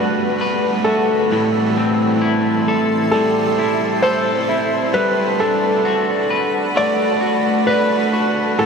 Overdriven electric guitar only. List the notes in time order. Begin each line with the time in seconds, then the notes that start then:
Already playing: A3 D4 F#4 B4
0.39 A3 D4
0.43 F#4 B4
1.29 A2 E3 G3
1.35 C4 E4 A4
3.11 G3 C4
3.16 E4 A4
4.02 G3 C4 E4
4.08 A4
4.93 G3 A3 D4 F#4
4.97 B4
5.38 F#4 B4
5.44 D4
6.75 A3 D4
6.79 F#4 B4
7.67 A3 D4 F#4
7.72 B4
8.58 A2 E3 G3 C4 E4
8.62 A4